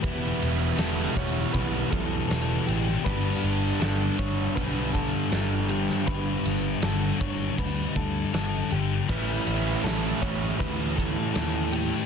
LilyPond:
<<
  \new Staff \with { instrumentName = "Clean electric guitar" } { \time 4/4 \key g \lydian \tempo 4 = 80 b'4 a'8 cis''8 b'8 a'8 a'8 g'8 | b'4 a'8 cis''8 b'8 a'8 a'8 g'8 | b'4 a'8 cis''8 b'8 a'8 a'8 g'8 | b'4 a'8 cis''8 b'8 a'8 a'8 g'8 | }
  \new Staff \with { instrumentName = "Overdriven electric guitar" } { \clef bass \time 4/4 \key g \lydian <e g b e'>1 | <g, d g b d'>1~ | <g, d g b d'>1 | <a, e g cis' e'>1 | }
  \new Staff \with { instrumentName = "Distorted electric guitar" } { \clef bass \time 4/4 \key g \lydian <e, b, e>4 <e, b, e>8 <b, e>8 <e, b, e>4 <e, b, e>8 <b, e>8 | <g, d g>4 <g, d g>8 <d g>8 <g, d g>4 <g, d g>8 <d g>8 | <g, d g>4 <g, d g>8 <d g>8 <g, d g>4 <g, d g>8 <d g>8 | <a, e a>4 <a, e a>8 <e a>8 <a, e a>4 <a, e a>8 <e a>8 | }
  \new Staff \with { instrumentName = "Picked electric bass" } { \clef bass \time 4/4 \key g \lydian e,,8 e,,8 e,,8 e,,8 b,,8 b,,8 e,,8 a,,8 | g,,8 g,,8 g,,8 g,,8 b,,4 g,,4 | g,,8 g,,8 g,,8 g,,8 d,8 d,8 g,,8 g,,8 | a,,8 a,,8 a,,8 a,,8 d,4 ees,4 | }
  \new DrumStaff \with { instrumentName = "Drums" } \drummode { \time 4/4 <bd cymr>8 <cymr sn>8 <cymr sn>8 <bd cymr>8 <bd cymr>8 <bd cymr>8 <cymr sn>8 cymr16 sn16 | <bd cymr>8 cymr8 <cymr sn>8 <bd cymr>8 <bd cymr>8 <bd cymr>8 <cymr sn>8 cymr16 sn16 | <bd cymr>8 <cymr sn>8 <cymr sn>8 <bd cymr>8 <bd cymr>8 <bd cymr>8 <cymr sn>8 cymr8 | <cymc bd>8 <cymr sn>8 <cymr sn>8 <bd cymr>8 <bd cymr>8 <bd cymr>8 <cymr sn>8 cymr16 sn16 | }
>>